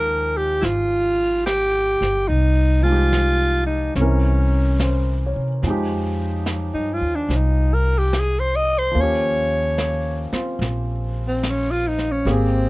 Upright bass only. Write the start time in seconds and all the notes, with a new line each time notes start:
Already playing: D#2
0.62 G#1
2.01 G1
2.29 C2
3.95 C2
5.36 C3
5.62 F2
6.74 G2
7.01 D#2
7.29 C2
8.95 D#2
10.32 muted upright bass stroke
10.59 A#1
12.25 G#1